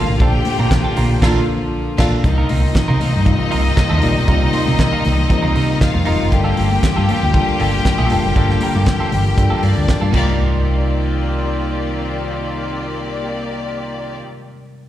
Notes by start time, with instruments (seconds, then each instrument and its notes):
Already playing: string section D3 G3 A#3 F4 F5, tine electric piano G3 D4 F4 A4 A#4, clean electric guitar A#3
0.08 fingered electric bass A1, muted clean electric guitar stroke
0.19 fingered electric bass A#1, tine electric piano A#2 A#3 D4 A4 C5, string section D3 F3 G4 G5, clean electric guitar D4 F4 A4, kick, closed hi-hat, muted conga
0.33 muted clean electric guitar stroke, muted conga
0.45 muted clean electric guitar stroke, open hi-hat, high conga
0.59 fingered electric bass A#2, clean electric guitar D4 F4 A#4, high conga
0.71 kick, snare, clap, closed hi-hat, muted conga
0.84 clean electric guitar D4 F4 A4, muted conga
0.96 fingered electric bass A#1, clean electric guitar D4 F4 A#4, open hi-hat, high conga, low conga
1.10 muted clean electric guitar stroke
1.22 fingered electric bass A#1, tine electric piano A#2 A#3 D4 A4, clean electric guitar D4 F4 A#4, string section F4 F5, kick, snare, crash
1.98 fingered electric bass A#1, tine electric piano A#2 A#3 D4 A4, clean electric guitar D4 F4 A4, string section F4 F5, kick, snare, crash
2.24 fingered electric bass C2, tine electric piano C3 G3 D#4 F4 A#4 D#5, string section D#3 F3 A#3 C4 D#4 D#5, muted clean electric guitar stroke, kick, closed hi-hat, muted conga
2.37 clean electric guitar D#4 F4 A#4, muted conga
2.49 fingered electric bass C2, clean electric guitar D#4 F4 A#4, open hi-hat, high conga
2.63 muted clean electric guitar stroke, high conga
2.75 muted clean electric guitar stroke, kick, snare, clap, closed hi-hat, muted conga
2.88 fingered electric bass C3, clean electric guitar D#4 F4 A#4, muted conga
3.00 clean electric guitar D#4 F4 A#4, open hi-hat, high conga, low conga
3.13 fingered electric bass G2, muted clean electric guitar stroke
3.25 tine electric piano C3 G3 D#4 F4 A#4 F5, kick, closed hi-hat, muted conga, low conga
3.39 muted clean electric guitar stroke, muted conga
3.51 fingered electric bass C2, clean electric guitar D#4 F4 A#4, open hi-hat
3.64 muted clean electric guitar stroke
3.76 muted clean electric guitar stroke, kick, snare, clap, closed hi-hat
3.90 fingered electric bass D#2, clean electric guitar D#4 F4 A#4, high conga
4.02 fingered electric bass A#1, tine electric piano C3 G3 D#4 F4 A#4 D5, clean electric guitar D#4 F4 A#4, open hi-hat
4.16 fingered electric bass B1, muted clean electric guitar stroke
4.27 fingered electric bass C2, tine electric piano C3 G3 D#4 F4 A#4 D#5, clean electric guitar D#4 F4 A#4, kick, closed hi-hat
4.41 muted conga
4.53 clean electric guitar D#4 F4 C5, open hi-hat, high conga
4.67 fingered electric bass C3, clean electric guitar D#4 F4 A#4, high conga
4.79 kick, snare, clap, closed hi-hat
4.93 clean electric guitar D#4 F4 A#4
5.05 fingered electric bass C2, open hi-hat, high conga, low conga
5.18 muted clean electric guitar stroke
5.29 tine electric piano C3 G3 D#4 F4 A#4 C5, muted clean electric guitar stroke, kick, closed hi-hat, muted conga, low conga
5.38 tine electric piano D#5
5.42 fingered electric bass C2, clean electric guitar D#4 F4 A#4, muted conga
5.55 fingered electric bass C3, clean electric guitar D#4 F4 A#4, open hi-hat
5.69 muted clean electric guitar stroke
5.80 string section F4 F5, muted clean electric guitar stroke, kick, snare, clap, closed hi-hat
5.94 fingered electric bass F2, muted clean electric guitar stroke, muted conga, high conga
6.05 fingered electric bass F1, tine electric piano C3 G3 D#4 F4 A#4 D#5, clean electric guitar D#4 F4 A#4, open hi-hat
6.19 fingered electric bass F#1, clean electric guitar D#4 F4 A#4
6.31 fingered electric bass G1, string section D3 F3 G3 F4 G4 G5, tine electric piano G3 D4 F4 A4 A#4, muted clean electric guitar stroke, kick, closed hi-hat
6.44 clean electric guitar A#3 F4 A4, muted conga
6.56 fingered electric bass G1, clean electric guitar A#3 F4 A4, open hi-hat, high conga
6.71 muted clean electric guitar stroke, high conga
6.83 muted clean electric guitar stroke, muted fingered electric bass stroke, kick, snare, clap, closed hi-hat
6.96 fingered electric bass G2, clean electric guitar A#3 F4 A4
7.08 clean electric guitar A#3 F4 A4, open hi-hat, high conga, low conga
7.22 fingered electric bass D2, muted clean electric guitar stroke
7.33 tine electric piano G3 D4 F4 A4 A#4, kick, closed hi-hat, muted conga, low conga
7.47 muted clean electric guitar stroke, muted conga
7.59 fingered electric bass G1, clean electric guitar A#3 F4 A4, open hi-hat
7.73 muted clean electric guitar stroke
7.85 kick, snare, clap, closed hi-hat, muted conga
7.98 fingered electric bass A#1, clean electric guitar A#3 F4 A4, muted conga, high conga
8.10 fingered electric bass F1, tine electric piano G3 D4 F4 A4 A#4, clean electric guitar A#3 F4 A4, open hi-hat
8.24 fingered electric bass F#1, muted clean electric guitar stroke
8.35 fingered electric bass G1, tine electric piano G3 D4 F4 A4 A#4, clean electric guitar A#3 F4 A4, string section G4, kick, closed hi-hat
8.50 snare
8.61 clean electric guitar A#3 F4 A#4, open hi-hat, high conga
8.75 fingered electric bass G2, clean electric guitar A#3 F4 A4, high conga
8.86 muted clean electric guitar stroke, kick, snare, clap, closed hi-hat, muted conga
9.00 clean electric guitar A#3 F4 A4, muted conga
9.12 fingered electric bass G1, muted clean electric guitar stroke, open hi-hat, high conga, low conga
9.25 muted clean electric guitar stroke
9.37 fingered electric bass G2, tine electric piano G3 D4 F4 A4 A#4, muted clean electric guitar stroke, kick, closed hi-hat, muted conga, low conga
9.50 clean electric guitar A#3 F4 A4, muted conga
9.62 fingered electric bass G2, clean electric guitar A#3 F4 A4, string section D4 D5, open hi-hat
9.76 fingered electric bass D2, muted clean electric guitar stroke
9.88 muted clean electric guitar stroke, kick, snare, clap, closed hi-hat
10.01 fingered electric bass G2, clean electric guitar A#3 F4 A4, muted conga, high conga
10.11 fingered electric bass C2, tine electric piano C3 G3 D#4, string section D#3 A#3 F4 G4 D5, clean electric guitar D#4 F4, kick, crash, high conga
10.15 string section C4 D5, tine electric piano F4 A#4 D5, clean electric guitar A#4